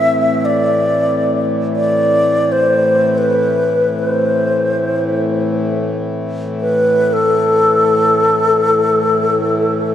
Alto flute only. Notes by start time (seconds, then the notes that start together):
Already playing: E5
0.45 D5
1.76 D5
2.52 C5
3.18 B4
3.99 B4
4.10 C5
6.61 B4
7.13 A4